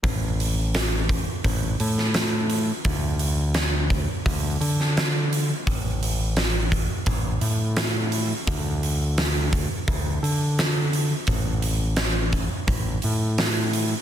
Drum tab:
HH |o-o-o-o-o-o-o-o-|o-o-o-o-o-o-o-o-|o-o-o-o-o-o-o-o-|o-o-o-o-o-o-o-o-|
SD |----o------oo---|----o------oo---|----o-------o---|----o-------o---|
BD |o-----o-o-------|o-----o-o-------|o-----o-o-------|o-----o-o-------|

HH |o-o-o-o-o-o-o-o-|
SD |----o-------o---|
BD |o-----o-o-------|